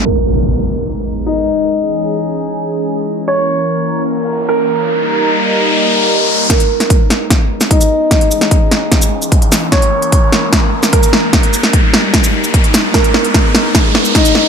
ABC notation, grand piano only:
X:1
M:4/4
L:1/8
Q:1/4=149
K:G#m
V:1 name="Grand piano"
A4 z2 D2- | D8 | c4 z2 A2- | A8 |
A4 z2 D2- | D8 | c4 z2 A2- | A8 |
A4 z2 D2 |]